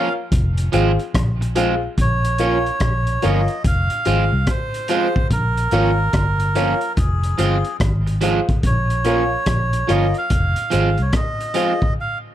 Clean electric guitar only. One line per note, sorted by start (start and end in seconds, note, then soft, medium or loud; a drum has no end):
0.72 0.90 F3 medium
0.72 0.91 G#3 medium
0.72 0.91 C4 loud
0.72 0.91 F4 medium
1.41 muted clean electric guitar stroke soft
1.56 1.74 F3 medium
1.56 1.74 G#3 medium
1.56 1.74 C4 medium
1.56 1.74 F4 medium
2.39 2.57 F3 medium
2.39 2.57 A#3 medium
2.39 2.57 C#4 medium
2.39 2.58 F4 medium
3.22 3.40 F3 medium
3.22 3.40 A#3 medium
3.22 3.41 C#4 medium
3.22 3.41 F4 medium
4.06 4.23 F3 medium
4.06 4.24 G#3 medium
4.06 4.24 C4 medium
4.06 4.24 F4 medium
4.89 5.07 F3 medium
4.89 5.07 G#3 medium
4.89 5.07 C4 medium
4.89 5.07 F4 loud
5.72 5.90 F3 medium
5.72 5.90 A#3 medium
5.72 5.90 C#4 medium
5.72 5.90 F4 loud
6.55 6.73 F3 medium
6.55 6.73 A#3 medium
6.55 6.73 C#4 medium
6.55 6.74 F4 medium
7.38 7.56 F3 medium
7.38 7.56 G#3 medium
7.38 7.56 C4 loud
7.38 7.57 F4 medium
8.06 muted clean electric guitar stroke soft
8.21 8.39 F3 loud
8.21 8.39 G#3 medium
8.21 8.40 C4 medium
8.21 8.40 F4 medium
9.05 9.22 F3 medium
9.05 9.23 A#3 medium
9.05 9.23 C#4 medium
9.05 9.23 F4 medium
9.87 10.06 F3 medium
9.87 10.06 A#3 medium
9.87 10.06 C#4 medium
9.87 10.06 F4 medium
10.70 10.89 F3 medium
10.70 10.89 G#3 medium
10.70 10.89 C4 medium
10.70 10.89 F4 loud
11.54 11.72 F3 medium
11.54 11.72 G#3 medium
11.54 11.72 C4 medium
11.54 11.73 F4 medium